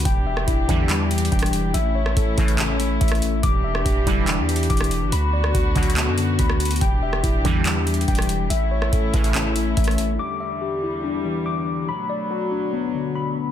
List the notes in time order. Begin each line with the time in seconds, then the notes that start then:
0.05 E1 E3 D4 G4 G5, kick, closed hi-hat
0.27 E5
0.37 cross-stick
0.47 E1 E4, kick, closed hi-hat
0.69 E2 D3 E3 G3 D4, kick, closed hi-hat
0.89 G3, clap, closed hi-hat
1.11 E3, closed hi-hat
1.18 closed hi-hat
1.25 closed hi-hat
1.32 E1 G5, kick, closed hi-hat
1.39 cross-stick, closed hi-hat
1.46 closed hi-hat
1.53 closed hi-hat
1.74 A1 A3 C#4 E4 E5, closed hi-hat
1.95 C#5
2.06 cross-stick
2.16 A1 A4, kick, closed hi-hat
2.38 A1 A2 C#3 E3 E4, kick, closed hi-hat
2.48 closed hi-hat
2.58 C#4, clap, closed hi-hat
2.80 A3, closed hi-hat
3.01 A1 E5, kick, closed hi-hat
3.08 cross-stick, closed hi-hat
3.15 closed hi-hat
3.22 closed hi-hat
3.43 E1 E3 D4 G4 D6, kick, closed hi-hat
3.64 E5
3.75 cross-stick
3.85 E1 G4, kick, closed hi-hat
4.07 E1 D3 E3 G3 E4, kick, closed hi-hat
4.27 D4, clap, closed hi-hat
4.38 E2
4.49 E3, closed hi-hat
4.56 closed hi-hat
4.63 closed hi-hat
4.70 E1 D6, kick, closed hi-hat
4.77 cross-stick, closed hi-hat
4.84 closed hi-hat
4.91 closed hi-hat
5.02 G1
5.12 D2 D3 B3 F#4 B5, closed hi-hat
5.33 D5
5.44 cross-stick
5.54 D2 F#4, kick, closed hi-hat
5.76 D2 B2 D3 F#3 D4, kick, closed hi-hat
5.83 closed hi-hat
5.90 closed hi-hat
5.96 B3, clap, closed hi-hat
6.07 F#2
6.18 D3, closed hi-hat
6.39 D2 B5, kick, closed hi-hat
6.50 cross-stick
6.60 closed hi-hat
6.65 closed hi-hat
6.71 closed hi-hat
6.76 closed hi-hat
6.81 E1 E3 D4 G4 G5, kick, closed hi-hat
7.03 E5
7.13 cross-stick
7.23 E1 E4, kick, closed hi-hat
7.45 E2 D3 E3 G3 D4, kick, closed hi-hat
7.65 G3, clap, closed hi-hat
7.87 E3, closed hi-hat
7.94 closed hi-hat
8.01 closed hi-hat
8.08 E1 G5, kick, closed hi-hat
8.15 cross-stick, closed hi-hat
8.22 closed hi-hat
8.29 closed hi-hat
8.50 A1 A3 C#4 E4 E5, closed hi-hat
8.71 C#5
8.82 cross-stick
8.92 A1 A4, kick, closed hi-hat
9.14 A1 A2 C#3 E3 E4, kick, closed hi-hat
9.24 closed hi-hat
9.34 C#4, clap, closed hi-hat
9.56 A3, closed hi-hat
9.77 A1 E5, kick, closed hi-hat
9.84 cross-stick, closed hi-hat
9.91 closed hi-hat
9.98 closed hi-hat
10.19 E2 D3 G3 D6
10.40 E5
10.61 G4
10.83 E4
11.04 D4
11.25 E3
11.46 D6
11.88 D2 B2 F#3 B5
12.09 D5
12.31 F#4
12.52 D4
12.72 B3
12.94 D3
13.15 B5